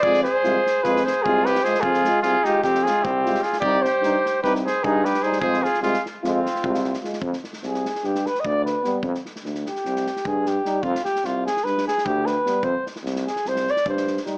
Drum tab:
SD |-oo-o-o-ooo---oooo|-oo-o-o-ooo---oooo|--o-o-o-ooo---oooo|-oooooo-o-oo-ooooo|
BD |o-------o---o-----|o-------o---o-----|o-------o---o-----|o-----------o-----|

SD |-ooooooooooo--o-o-|-ooooooooooo--o-o-|-oooo-oooooo--o-o-|--oooooooooo-oooo-|
BD |o-----------o-----|o-----------o-----|o-----------o-----|o-----------o-----|